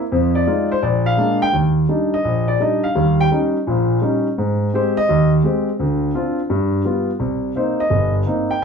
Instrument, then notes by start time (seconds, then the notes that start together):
grand piano
0.12 F2 F3
0.35 D5
0.47 G#3 D#4 F4
0.72 C5
0.82 A#1 D5
1.06 F5
1.17 G#3 A#3 D4
1.42 G5
1.53 D#2
1.89 G3 D4 D#4
2.14 D#5
2.25 A#1
2.48 D5
2.60 G3 D4 D#4 D#5
2.84 F5
2.95 D#2 G3
3.21 G5
3.31 G3 C#4 D#4
3.67 A#1 A#2
4.02 G3 C#4 D#4
4.38 G#2
4.73 G#3 C4 G4 C5
4.97 D#5
5.09 D#2
5.44 G#3 C4 G4
5.79 D2 D3
6.14 C4 D4 F4
6.50 G2
6.85 G3 B3 F4
7.20 C2
7.56 A#3 C4 D#4 C5
7.80 D#5
7.90 G1
8.26 A#3 C4 D#4
8.51 G5